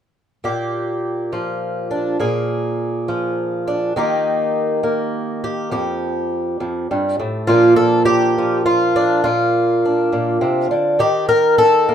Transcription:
0.44 A#2 G4
1.32 F3
1.91 D4
2.20 A#2 G#4
3.08 F3
3.68 D4
3.96 D#3 A#3 D#4 G4
4.83 A#3
5.44 G4
5.71 F2 G4
6.60 F2
6.91 G2
7.19 A2
7.47 A#2 F3 A#3 D4 F4
7.76 A4
8.05 G4
8.38 F3
8.66 F4
8.96 D4
9.24 A#2 F4
9.85 D4
10.12 A#2
10.41 C3
10.71 D3
10.99 D#3 G4
11.29 A#4
11.58 A4
11.89 A#3

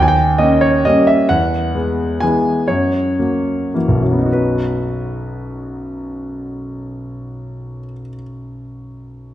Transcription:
Already playing: D#2
0.02 G#5
0.08 G5
0.38 A#3 C#4 D#5
0.61 C#5
0.85 G3 A#3 C#4 D#5
1.07 E5
1.29 E2 F#5
1.74 G#3 B3
2.20 E3 G#3 B3 G#5
2.68 F#2 C#5
3.19 F#3 A#3
3.74 E3 F#3 A#3
3.88 B1
3.95 F#2
4.03 F#3
4.11 B3
4.19 D#4
4.26 F#4
4.33 B4

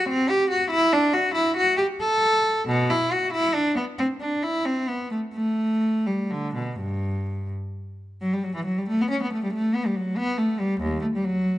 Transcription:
0.09 C4
0.29 G4
0.50 F#4
0.70 E4
0.93 D4
1.13 F#4
1.34 E4
1.57 F#4
1.77 G4
2.00 A4
2.68 B2
2.90 E4
3.12 F#4
3.33 E4
3.54 D4
3.76 B3
3.98 C4
4.20 D4
4.43 E4
4.65 C4
4.88 B3
5.11 A3
5.34 A3
6.06 G3
6.31 D3
6.55 B2
6.79 G2
8.21 F#3
8.33 G3
8.44 F#3
8.56 E3
8.65 F#3
8.78 G3
8.88 A3
9.01 B3
9.10 C#4
9.22 B3
9.32 A3
9.44 G3
9.54 A3
9.74 B3
9.86 G3
9.96 F#3
10.17 B3
10.37 A3
10.60 G3
10.81 D#2
11.02 A3
11.15 G3
11.24 F#3

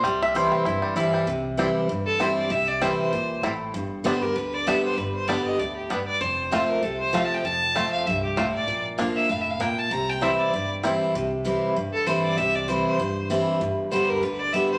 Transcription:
Already playing: C5
0.04 C2 C3 G3
0.22 E5
0.35 E3 G3 C4 E4 C5
0.52 C4
0.65 G1 G2 E4
0.82 G3
0.96 E3 G3 C4 E4
1.14 G3
1.27 C2 C3
1.57 E3 G3 C4 E4
1.89 G1 G2
2.06 A4
2.19 E3 G3 C4 E4 C5
2.37 D5
2.50 C2 C3 E5
2.67 D5
2.81 E3 G3 C4 E4 C5
2.99 C5
3.12 A#1 A#2
3.43 A1 A2 G3 C4 E4
3.74 G1 G2
4.04 D3 G3 B3 D4 G4 C5
4.22 B3 G4 A#4
4.36 D2 D3 B4
4.54 D5
4.67 D3 G3 B3 D4 G4 E5
4.84 C5
4.97 G1 G2 B4
5.15 C5
5.28 D3 G3 B3 D4 G4 D5
5.46 D#5
5.59 D2 A2 D5
5.76 G4
5.90 G2 G3 B3 D4 B4
6.07 D5
6.21 F1 F2 C5
6.52 F3 A3 C4 F4
6.69 A#4
6.82 C2 C3 A4
7.00 C5
7.13 F3 A3 C4 F4 F5
7.24 A5
7.34 G5
7.44 F1 F2 A5
7.76 F3 A3 C4 F4
7.92 F5
8.06 C2 G2 E5
8.23 G4
8.36 A2 A3 C4 F4 C5
8.54 D5
8.68 A#1 A#2
8.98 F3 A#3 D4 F4
9.16 E5
9.29 F1 A2 F5
9.40 E5
9.50 F5
9.60 A#2 A#3 D4 G5
9.78 A5
9.91 C2 C3 A#5
10.09 G5
10.21 E3 G3 C4 E4 E5
10.40 D5
10.52 G1 G2
10.83 E3 G3 C4 E4
11.14 C2 C3
11.45 E3 G3 C4 E4
11.76 G2
11.93 A4
12.06 E3 G3 C4 E4 C5
12.24 D5
12.37 C2 C3 E5
12.54 D5
12.68 E3 G3 C4 E4 C5
12.86 C5
12.99 G2
13.30 E3 G3 C4 E4
13.61 G1 G2
13.91 D3 G3 B3 G4 C5
14.09 A#4
14.22 D2 D3 B4
14.39 D5
14.52 D3 G3 B3 G4 E5
14.71 C5

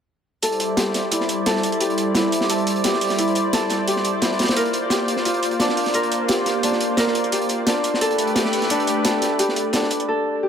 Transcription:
0.42 G3 E4 A4 C5 D5, closed hi-hat
0.52 closed hi-hat
0.60 closed hi-hat
0.77 G4, snare, closed hi-hat
0.94 snare, closed hi-hat
1.11 E4, closed hi-hat
1.21 snare
1.29 closed hi-hat
1.46 A4, snare, closed hi-hat
1.56 snare
1.63 closed hi-hat
1.72 closed hi-hat
1.80 G4, closed hi-hat
1.90 closed hi-hat
1.98 closed hi-hat
2.15 E4, snare, closed hi-hat
2.32 closed hi-hat
2.41 snare
2.50 A4, closed hi-hat
2.58 closed hi-hat
2.67 closed hi-hat
2.76 closed hi-hat
2.84 G4, snare, closed hi-hat
2.93 snare
3.01 closed hi-hat, open hi-hat
3.10 snare, closed hi-hat
3.19 E4, closed hi-hat
3.28 closed hi-hat
3.35 closed hi-hat
3.53 A4, snare, closed hi-hat
3.70 snare, closed hi-hat
3.88 G4, closed hi-hat
3.96 snare
4.04 closed hi-hat
4.22 E4, snare, closed hi-hat
4.31 snare
4.39 A#3 F4, snare, closed hi-hat
4.43 snare, closed hi-hat
4.48 snare, closed hi-hat
4.56 A#4, closed hi-hat
4.65 closed hi-hat
4.73 closed hi-hat
4.90 G4, snare, closed hi-hat
5.08 closed hi-hat
5.16 snare
5.25 F4, closed hi-hat
5.34 closed hi-hat
5.43 closed hi-hat
5.51 closed hi-hat
5.60 D4, snare, closed hi-hat
5.69 snare
5.77 closed hi-hat, open hi-hat
5.86 snare, closed hi-hat
5.94 A#4, closed hi-hat
6.03 closed hi-hat
6.12 closed hi-hat
6.28 G4, snare, closed hi-hat
6.46 snare, closed hi-hat
6.63 D4, closed hi-hat
6.72 snare
6.81 closed hi-hat
6.97 A#4, snare, closed hi-hat
7.07 snare
7.15 closed hi-hat
7.24 closed hi-hat
7.32 G4, closed hi-hat
7.41 closed hi-hat
7.49 closed hi-hat
7.67 D4, snare, closed hi-hat
7.84 closed hi-hat
7.94 snare
8.01 A3 G4 A4 B4, closed hi-hat
8.11 closed hi-hat
8.18 closed hi-hat
8.27 closed hi-hat
8.36 G4, snare, closed hi-hat
8.45 snare
8.53 closed hi-hat, open hi-hat
8.62 snare, closed hi-hat
8.70 D4, closed hi-hat
8.80 closed hi-hat
8.87 closed hi-hat
9.05 A4, snare, closed hi-hat
9.22 snare, closed hi-hat
9.39 G4, closed hi-hat
9.49 snare
9.56 closed hi-hat
9.73 D4, snare, closed hi-hat
9.83 snare
9.91 closed hi-hat
10.00 closed hi-hat
10.08 A4
10.43 G4

